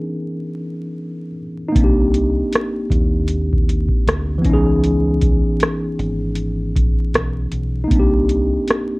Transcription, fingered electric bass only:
0, 0, Header, 1, 2, 480
1, 0, Start_track
1, 0, Tempo, 769231
1, 1093, Time_signature, 4, 2, 24, 8
1, 5613, End_track
2, 0, Start_track
2, 0, Title_t, "Fingered electric bass"
2, 0, Program_c, 0, 33
2, 1097, Note_on_c, 0, 36, 83
2, 1496, Note_off_c, 0, 36, 0
2, 1813, Note_on_c, 0, 39, 90
2, 2412, Note_off_c, 0, 39, 0
2, 2538, Note_on_c, 0, 38, 94
2, 2736, Note_off_c, 0, 38, 0
2, 2776, Note_on_c, 0, 37, 77
2, 3376, Note_off_c, 0, 37, 0
2, 3738, Note_on_c, 0, 32, 99
2, 4335, Note_off_c, 0, 32, 0
2, 4457, Note_on_c, 0, 35, 98
2, 4656, Note_off_c, 0, 35, 0
2, 4696, Note_on_c, 0, 35, 75
2, 4895, Note_off_c, 0, 35, 0
2, 4937, Note_on_c, 0, 36, 97
2, 5336, Note_off_c, 0, 36, 0
2, 5613, End_track
0, 0, End_of_file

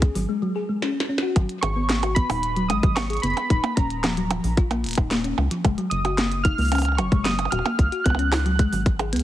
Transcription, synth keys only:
0, 0, Header, 1, 2, 480
1, 0, Start_track
1, 0, Tempo, 535714
1, 1219, Time_signature, 4, 2, 24, 8
1, 8271, End_track
2, 0, Start_track
2, 0, Title_t, "Synth keys"
2, 0, Program_c, 0, 88
2, 0, Note_on_c, 0, 68, 78
2, 215, Note_off_c, 0, 68, 0
2, 1446, Note_on_c, 0, 85, 98
2, 1925, Note_on_c, 0, 83, 100
2, 1946, Note_off_c, 0, 85, 0
2, 2377, Note_off_c, 0, 83, 0
2, 2405, Note_on_c, 0, 87, 106
2, 2645, Note_on_c, 0, 85, 107
2, 2659, Note_off_c, 0, 87, 0
2, 2728, Note_off_c, 0, 85, 0
2, 2823, Note_on_c, 0, 85, 72
2, 2886, Note_on_c, 0, 83, 99
2, 2892, Note_off_c, 0, 85, 0
2, 3338, Note_off_c, 0, 83, 0
2, 3364, Note_on_c, 0, 82, 81
2, 4055, Note_off_c, 0, 82, 0
2, 5286, Note_on_c, 0, 87, 91
2, 5766, Note_on_c, 0, 89, 104
2, 5787, Note_off_c, 0, 87, 0
2, 6246, Note_on_c, 0, 85, 89
2, 6267, Note_off_c, 0, 89, 0
2, 6485, Note_on_c, 0, 87, 98
2, 6499, Note_off_c, 0, 85, 0
2, 6725, Note_on_c, 0, 89, 107
2, 6739, Note_off_c, 0, 87, 0
2, 7205, Note_on_c, 0, 90, 103
2, 7226, Note_off_c, 0, 89, 0
2, 7896, Note_off_c, 0, 90, 0
2, 8271, End_track
0, 0, End_of_file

